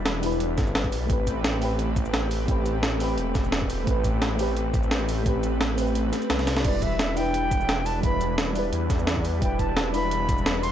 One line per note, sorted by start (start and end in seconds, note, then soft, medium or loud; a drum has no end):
0.00 0.56 E1 medium
0.00 0.20 G3 medium
0.00 1.06 G3 medium
0.00 0.22 D4 medium
0.00 1.06 D4 medium
0.00 0.24 E4 medium
0.00 1.06 E4 medium
0.00 0.26 B4 loud
0.00 1.06 B4 medium
0.06 snare loud
0.06 closed hi-hat medium
0.20 1.06 G3 medium
0.20 1.07 D4 medium
0.20 open hi-hat medium
0.20 shaker medium
0.24 1.08 E4 medium
0.24 1.09 B4 loud
0.32 shaker soft
0.40 closed hi-hat loud
0.58 0.94 G1 loud
0.58 kick loud
0.58 snare soft
0.58 closed hi-hat medium
0.58 shaker medium
0.67 shaker soft
0.75 snare loud
0.75 closed hi-hat medium
0.84 kick medium
0.84 closed hi-hat soft
0.92 1.08 B1 medium
0.92 open hi-hat medium
0.92 shaker medium
1.06 2.47 A1 medium
1.06 1.57 A3 medium
1.06 6.61 A3 medium
1.06 1.59 C4 medium
1.06 6.61 C4 medium
1.06 6.61 G4 medium
1.06 10.72 B4 medium
1.06 kick loud
1.06 closed hi-hat medium
1.11 1.60 G4 medium
1.11 1.61 B4 medium
1.27 kick medium
1.27 closed hi-hat medium
1.27 shaker medium
1.44 snare loud
1.44 closed hi-hat medium
1.58 2.44 A3 medium
1.58 2.46 C4 medium
1.58 open hi-hat medium
1.58 shaker medium
1.63 2.47 G4 medium
1.63 2.48 B4 medium
1.79 closed hi-hat medium
1.96 kick loud
1.96 closed hi-hat medium
1.96 shaker medium
2.06 shaker soft
2.14 snare loud
2.14 closed hi-hat medium
2.31 open hi-hat medium
2.31 shaker medium
2.45 3.17 A1 medium
2.45 2.96 A3 medium
2.45 2.98 C4 medium
2.45 kick loud
2.45 closed hi-hat medium
2.49 2.99 G4 medium
2.49 3.00 B4 loud
2.66 closed hi-hat medium
2.66 shaker medium
2.83 snare loud
2.83 closed hi-hat medium
2.97 3.82 A3 medium
2.97 3.85 C4 medium
2.97 open hi-hat medium
2.97 shaker medium
3.01 3.86 G4 medium
3.01 3.87 B4 loud
3.18 3.86 E1 medium
3.18 closed hi-hat medium
3.35 kick loud
3.35 snare soft
3.35 closed hi-hat medium
3.35 shaker medium
3.44 shaker soft
3.52 snare loud
3.52 closed hi-hat medium
3.62 kick medium
3.70 open hi-hat medium
3.70 shaker medium
3.84 5.25 A1 loud
3.84 4.35 A3 medium
3.84 4.37 C4 medium
3.84 kick loud
3.84 closed hi-hat medium
3.88 4.38 G4 medium
3.88 4.39 B4 medium
4.04 kick medium
4.04 closed hi-hat medium
4.04 shaker medium
4.22 snare loud
4.22 closed hi-hat medium
4.36 5.21 A3 medium
4.36 5.23 C4 medium
4.36 open hi-hat medium
4.36 shaker medium
4.40 5.25 G4 medium
4.40 5.26 B4 loud
4.57 closed hi-hat medium
4.74 kick loud
4.74 closed hi-hat medium
4.74 shaker medium
4.83 shaker soft
4.91 snare loud
4.91 closed hi-hat medium
5.09 open hi-hat medium
5.09 shaker medium
5.23 6.11 A1 loud
5.23 5.74 A3 medium
5.23 5.75 C4 medium
5.23 kick loud
5.23 closed hi-hat medium
5.27 5.77 G4 medium
5.27 5.78 B4 medium
5.43 closed hi-hat medium
5.43 shaker medium
5.61 snare loud
5.61 closed hi-hat medium
5.75 6.61 A3 medium
5.75 6.62 C4 medium
5.75 open hi-hat medium
5.75 shaker medium
5.79 6.63 G4 medium
5.79 6.65 B4 loud
5.87 shaker soft
5.95 closed hi-hat medium
6.13 snare soft
6.13 closed hi-hat medium
6.13 shaker medium
6.22 closed hi-hat soft
6.22 shaker soft
6.30 6.63 C2 loud
6.30 snare loud
6.30 closed hi-hat medium
6.39 snare medium
6.39 closed hi-hat soft
6.47 snare medium
6.47 open hi-hat medium
6.47 shaker medium
6.57 snare medium
6.57 closed hi-hat soft
6.61 8.02 E1 loud
6.61 7.12 G3 medium
6.61 10.72 G3 medium
6.61 7.14 D4 medium
6.61 10.72 D4 medium
6.61 10.72 E4 medium
6.61 6.84 D5 medium
6.61 kick loud
6.61 closed hi-hat medium
6.61 crash medium
6.66 7.15 E4 medium
6.66 7.16 B4 medium
6.82 7.18 E5 loud
6.82 kick medium
6.82 closed hi-hat medium
6.82 shaker medium
6.99 snare loud
6.99 closed hi-hat loud
7.13 7.99 G3 medium
7.13 8.01 D4 medium
7.13 7.87 G5 loud
7.13 open hi-hat medium
7.13 shaker medium
7.18 8.02 E4 medium
7.18 8.03 B4 loud
7.34 closed hi-hat loud
7.51 kick loud
7.51 closed hi-hat medium
7.51 shaker medium
7.61 shaker soft
7.69 snare loud
7.69 closed hi-hat medium
7.86 8.03 A5 loud
7.86 open hi-hat medium
7.86 shaker medium
8.00 8.72 E1 loud
8.00 8.51 G3 medium
8.00 8.53 D4 medium
8.00 8.36 B5 loud
8.00 kick loud
8.00 closed hi-hat medium
8.05 8.54 E4 medium
8.05 8.55 B4 medium
8.21 closed hi-hat medium
8.21 shaker medium
8.38 snare loud
8.38 closed hi-hat medium
8.52 9.37 G3 medium
8.52 9.40 D4 medium
8.52 open hi-hat medium
8.52 shaker medium
8.57 9.41 E4 medium
8.57 9.42 B4 loud
8.73 9.41 E2 medium
8.73 closed hi-hat loud
8.90 kick loud
8.90 snare soft
8.90 closed hi-hat medium
8.90 shaker medium
8.99 shaker soft
9.07 snare loud
9.07 closed hi-hat loud
9.17 kick medium
9.25 open hi-hat medium
9.25 shaker medium
9.39 10.72 E1 loud
9.39 9.89 G3 medium
9.39 9.92 D4 medium
9.39 9.61 G5 medium
9.39 kick loud
9.39 closed hi-hat loud
9.43 9.93 E4 medium
9.43 9.94 B4 medium
9.59 9.93 A5 loud
9.59 kick medium
9.59 closed hi-hat medium
9.59 shaker medium
9.77 snare loud
9.77 closed hi-hat medium
9.90 10.72 G3 medium
9.90 10.72 D4 medium
9.90 10.64 B5 loud
9.90 open hi-hat medium
9.90 shaker medium
9.95 10.72 E4 medium
9.95 10.72 B4 loud
10.11 closed hi-hat loud
10.29 kick loud
10.29 closed hi-hat medium
10.29 shaker medium
10.38 shaker soft
10.46 snare loud
10.46 closed hi-hat medium
10.63 10.72 C6 loud
10.63 open hi-hat medium
10.63 shaker medium